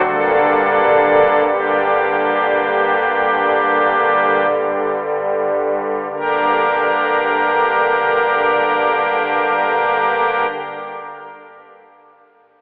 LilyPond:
<<
  \new Staff \with { instrumentName = "Pipe organ" } { \time 4/4 \key g \minor \tempo 4 = 37 <d' a'>4 <bes d' g'>2 r4 | <g, d bes d' g' bes'>1 | }
  \new Staff \with { instrumentName = "Pipe organ" } { \clef bass \time 4/4 \key g \minor <g,, g, d g bes>1 | g,,1 | }
>>